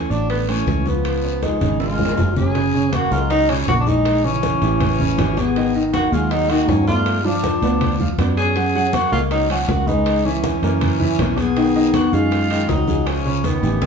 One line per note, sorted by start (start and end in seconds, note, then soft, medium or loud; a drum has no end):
0.00 0.12 E3 medium
0.00 0.13 C#4 medium
0.10 0.63 A1 medium
0.10 0.29 F#3 medium
0.10 0.42 D4 medium
0.10 0.29 D4 medium
0.10 0.42 D5 medium
0.10 high conga soft
0.10 short guiro medium
0.30 0.50 D3 medium
0.30 0.51 B3 medium
0.30 high bongo medium
0.30 high conga soft
0.30 high timbale medium
0.30 long guiro medium
0.49 0.88 E3 medium
0.49 0.79 A3 medium
0.49 0.89 C#4 medium
0.49 0.80 A4 medium
0.49 high conga soft
0.49 high timbale medium
0.67 1.55 C#2 medium
0.67 high bongo medium
0.67 low bongo medium
0.67 high conga medium
0.67 short guiro medium
0.86 1.44 F3 medium
0.86 1.17 F3 medium
0.86 1.44 B3 medium
0.86 1.18 F4 medium
0.86 high conga medium
0.86 short guiro medium
1.05 high bongo medium
1.05 high conga soft
1.05 high timbale medium
1.05 long guiro medium
1.24 1.39 C#4 medium
1.24 1.39 C#5 medium
1.24 high bongo soft
1.24 high conga soft
1.42 1.58 F3 medium
1.42 1.80 G#3 medium
1.42 1.79 D#4 medium
1.42 1.58 F4 medium
1.42 high bongo medium
1.42 high conga medium
1.42 high timbale medium
1.42 short guiro medium
1.61 2.14 G#1 medium
1.61 1.92 C#3 medium
1.61 1.92 C#4 medium
1.61 high bongo medium
1.61 high conga medium
1.61 high timbale medium
1.61 short guiro medium
1.80 2.33 G#3 medium
1.80 2.33 F4 medium
1.80 high bongo medium
1.80 high timbale medium
1.80 long guiro medium
1.92 high timbale medium
1.98 2.14 F3 medium
1.98 2.15 F4 medium
1.98 low bongo medium
1.98 low conga medium
2.05 high timbale medium
2.17 3.06 F#1 medium
2.17 2.48 G#3 medium
2.17 2.48 G#4 medium
2.17 low bongo loud
2.17 low conga medium
2.17 low timbale medium
2.17 short guiro medium
2.36 2.95 C#4 medium
2.36 2.95 G#4 medium
2.36 low bongo medium
2.36 low conga medium
2.36 short guiro medium
2.42 low timbale medium
2.55 2.71 C#3 medium
2.55 2.71 C#4 medium
2.55 2.71 C#5 medium
2.55 high bongo medium
2.55 high conga soft
2.55 high timbale medium
2.55 long guiro medium
2.74 3.05 C#3 medium
2.74 3.05 C#4 medium
2.74 3.05 C#5 medium
2.74 high conga soft
2.93 3.13 A#3 medium
2.93 3.14 F#4 loud
2.93 high bongo medium
2.93 high conga medium
2.93 high timbale medium
2.93 short guiro medium
3.11 3.64 C#2 medium
3.11 3.42 F#3 medium
3.11 3.30 G#3 medium
3.11 3.30 F4 loud
3.11 3.43 F#4 medium
3.11 3.43 A#4 medium
3.11 high conga soft
3.11 short guiro medium
3.30 3.51 F#3 medium
3.30 3.51 D#4 loud
3.30 high bongo medium
3.30 high conga soft
3.30 high timbale medium
3.30 long guiro medium
3.49 3.80 C#3 medium
3.49 3.68 F3 medium
3.49 3.80 C#4 medium
3.49 3.68 C#4 medium
3.49 3.80 C#5 medium
3.49 high conga soft
3.49 high timbale medium
3.67 4.56 A#1 medium
3.67 3.74 A#3 medium
3.67 3.74 F#4 medium
3.67 high bongo medium
3.67 low bongo medium
3.67 high conga medium
3.67 short guiro medium
3.80 3.89 F3 medium
3.80 3.90 D4 medium
3.87 4.18 E3 medium
3.87 4.26 G#3 medium
3.87 4.18 D#4 medium
3.87 4.26 D#4 loud
3.87 4.18 G#4 medium
3.87 high conga medium
3.87 short guiro medium
4.05 high bongo medium
4.05 high conga soft
4.05 high timbale medium
4.05 long guiro medium
4.24 4.55 C#3 medium
4.24 5.39 E3 medium
4.24 5.40 C#4 medium
4.24 4.56 C#4 medium
4.24 4.56 C#5 medium
4.24 high bongo soft
4.24 high conga soft
4.43 high bongo medium
4.43 high conga medium
4.43 high timbale medium
4.43 short guiro medium
4.62 5.14 A1 medium
4.62 4.93 E3 medium
4.62 4.93 E4 medium
4.62 4.93 G4 medium
4.62 high bongo soft
4.62 high conga soft
4.62 high timbale medium
4.62 short guiro medium
4.80 high bongo medium
4.80 high conga soft
4.80 low conga medium
4.80 high timbale medium
4.80 long guiro medium
5.00 5.15 C#3 medium
5.00 5.15 C#4 medium
5.00 5.16 C#5 medium
5.00 high bongo soft
5.00 high conga soft
5.00 low conga medium
5.18 6.06 G#1 medium
5.18 5.49 E3 medium
5.18 5.50 E4 medium
5.18 5.50 G4 medium
5.18 high bongo medium
5.18 low bongo medium
5.18 high conga medium
5.18 high timbale medium
5.18 low timbale medium
5.18 short guiro medium
5.37 5.77 B3 medium
5.37 5.77 G#4 loud
5.37 high conga medium
5.37 high timbale medium
5.37 short guiro medium
5.56 5.72 D#3 medium
5.56 5.72 D#4 medium
5.56 5.72 D#5 medium
5.56 high bongo medium
5.56 high conga soft
5.56 high timbale medium
5.56 long guiro medium
5.75 6.06 D#3 medium
5.75 6.06 D#4 medium
5.75 6.06 D#5 medium
5.75 high conga soft
5.93 6.15 A#3 medium
5.93 6.14 F#4 loud
5.93 high bongo medium
5.93 high conga medium
5.93 high timbale medium
5.93 short guiro medium
6.12 6.65 D#2 medium
6.12 6.43 F#3 medium
6.12 6.33 G#3 medium
6.12 6.33 F4 medium
6.12 6.44 F#4 medium
6.12 6.44 G#4 medium
6.12 high conga soft
6.12 short guiro medium
6.31 6.51 F#3 medium
6.31 6.51 D#4 loud
6.31 high bongo medium
6.31 high conga soft
6.31 high timbale medium
6.31 long guiro medium
6.50 6.81 D#3 medium
6.50 6.71 A#3 medium
6.50 6.81 D#4 medium
6.50 6.71 F#4 medium
6.50 6.81 D#5 medium
6.50 high conga soft
6.50 high timbale medium
6.68 7.56 G2 medium
6.68 6.87 F#3 medium
6.68 6.87 C#4 medium
6.68 high bongo medium
6.68 low bongo medium
6.68 high conga medium
6.68 low timbale medium
6.68 short guiro medium
6.87 7.27 A3 medium
6.87 7.18 B3 medium
6.87 7.27 F4 loud
6.87 7.19 B4 medium
6.87 7.19 D5 medium
6.87 high conga medium
6.87 short guiro medium
7.06 high bongo medium
7.06 high conga soft
7.06 high timbale medium
7.06 long guiro medium
7.25 7.56 F3 medium
7.25 8.11 F3 medium
7.25 8.11 D4 medium
7.25 7.56 F4 medium
7.25 7.56 F5 medium
7.25 high bongo soft
7.25 high conga soft
7.43 high bongo medium
7.43 high conga medium
7.43 high timbale medium
7.43 short guiro medium
7.62 8.14 D2 medium
7.62 7.94 B3 medium
7.62 7.94 B4 medium
7.62 7.94 D5 medium
7.62 high bongo soft
7.62 high conga soft
7.62 high timbale medium
7.62 short guiro medium
7.81 high bongo medium
7.81 high conga soft
7.81 low conga medium
7.81 high timbale medium
7.81 long guiro medium
8.00 8.16 F3 medium
8.00 8.16 F4 medium
8.00 8.16 F5 medium
8.00 high bongo soft
8.00 high conga soft
8.00 low conga medium
8.18 9.06 F#2 medium
8.18 8.49 B3 medium
8.18 8.50 B4 medium
8.18 8.50 D5 medium
8.18 high bongo medium
8.18 low bongo medium
8.18 high conga medium
8.18 high timbale medium
8.18 low timbale medium
8.18 short guiro medium
8.37 8.96 C#4 medium
8.37 8.95 G#4 loud
8.37 high timbale medium
8.37 short guiro medium
8.56 8.72 F#3 medium
8.56 8.72 F#4 medium
8.56 8.72 F#5 medium
8.56 high bongo medium
8.56 high conga soft
8.56 high timbale medium
8.56 long guiro medium
8.74 9.06 F#3 medium
8.74 9.06 F#4 medium
8.74 9.06 F#5 medium
8.74 high conga soft
8.93 9.12 A#3 medium
8.93 9.12 F#4 loud
8.93 high bongo medium
8.93 high conga medium
8.93 high timbale medium
8.93 short guiro medium
9.12 9.65 C#2 medium
9.12 9.21 G#3 medium
9.12 9.43 A#3 medium
9.12 9.21 F4 medium
9.12 9.43 A#4 medium
9.12 9.43 C#5 medium
9.12 high conga soft
9.12 short guiro medium
9.31 9.49 F#3 medium
9.31 9.49 D#4 medium
9.31 high bongo medium
9.31 high conga soft
9.31 high timbale medium
9.31 long guiro medium
9.50 9.71 F3 medium
9.50 9.81 F#3 medium
9.50 9.70 C#4 medium
9.50 9.81 F#4 medium
9.50 9.82 F#5 medium
9.50 high conga soft
9.50 high timbale medium
9.68 10.57 C#2 medium
9.68 9.90 A#3 medium
9.68 9.89 F#4 medium
9.68 high bongo medium
9.68 low bongo medium
9.68 high conga medium
9.68 short guiro medium
9.87 10.19 G#3 medium
9.87 10.27 G#3 medium
9.87 10.27 D#4 loud
9.87 10.19 G#4 medium
9.87 10.19 B4 medium
9.87 high conga medium
9.87 short guiro medium
10.06 high bongo medium
10.06 high conga soft
10.06 high timbale medium
10.06 long guiro medium
10.25 10.56 E3 medium
10.25 11.40 E3 medium
10.25 11.39 C#4 medium
10.25 10.56 E4 medium
10.25 10.57 E5 medium
10.25 high bongo soft
10.25 high conga soft
10.44 high bongo medium
10.44 high conga loud
10.44 high timbale medium
10.44 short guiro medium
10.62 11.15 F#2 medium
10.62 10.94 A#3 medium
10.62 10.94 A#4 medium
10.62 10.94 C#5 medium
10.62 high bongo soft
10.62 high conga soft
10.62 high timbale medium
10.62 short guiro medium
10.81 high bongo medium
10.81 high conga soft
10.81 low conga medium
10.81 high timbale medium
10.81 long guiro medium
11.00 11.15 E3 medium
11.00 11.16 E4 medium
11.00 11.16 E5 medium
11.00 high bongo soft
11.00 high conga soft
11.00 low conga medium
11.19 12.07 B1 medium
11.19 11.50 A#3 medium
11.19 11.50 A#4 medium
11.19 11.50 C#5 medium
11.19 high bongo medium
11.19 low bongo medium
11.19 high conga medium
11.19 high timbale medium
11.19 short guiro medium
11.38 11.93 B3 medium
11.38 11.93 G#4 loud
11.38 high conga medium
11.38 high timbale medium
11.38 short guiro medium
11.57 11.72 D#3 medium
11.57 11.72 D#4 medium
11.57 11.72 D#5 medium
11.57 high bongo medium
11.57 high conga soft
11.57 high timbale medium
11.57 long guiro medium
11.75 12.06 D#3 medium
11.75 12.06 D#4 medium
11.75 12.06 D#5 medium
11.75 high conga soft
11.94 12.15 B3 medium
11.94 12.14 F#4 loud
11.94 high bongo medium
11.94 high conga loud
11.94 high timbale medium
11.94 short guiro medium
12.13 12.65 F#2 medium
12.13 12.44 F#3 medium
12.13 12.71 G#3 medium
12.13 12.44 D#4 medium
12.13 12.70 F4 loud
12.13 12.44 G#4 medium
12.13 high conga soft
12.13 short guiro medium
12.31 high bongo medium
12.31 high conga soft
12.31 high timbale medium
12.31 long guiro medium
12.50 12.81 D#3 medium
12.50 12.81 D#4 medium
12.50 12.82 D#5 medium
12.50 high conga soft
12.50 high timbale medium
12.69 13.57 C#2 medium
12.69 13.09 F#3 medium
12.69 13.08 D#4 medium
12.69 high bongo medium
12.69 low bongo medium
12.69 high conga medium
12.69 low timbale medium
12.69 short guiro medium
12.87 13.19 F3 medium
12.87 13.19 F4 medium
12.87 13.19 G#4 medium
12.87 high conga medium
12.87 short guiro medium
13.06 13.46 F3 medium
13.06 13.46 C#4 medium
13.06 high bongo medium
13.06 high conga soft
13.06 high timbale medium
13.06 long guiro medium
13.25 13.56 C#3 medium
13.25 13.56 C#4 medium
13.25 13.56 C#5 medium
13.25 high bongo soft
13.25 high conga soft
13.44 13.82 D#3 medium
13.44 13.86 B3 medium
13.44 high bongo medium
13.44 high conga loud
13.44 high timbale medium
13.44 short guiro medium
13.62 13.86 A1 medium
13.62 13.86 E3 medium
13.62 13.86 E4 medium
13.62 13.86 G4 medium
13.62 high bongo soft
13.62 high timbale medium
13.62 short guiro medium
13.82 high bongo medium
13.82 low conga medium
13.82 high timbale loud
13.82 long guiro medium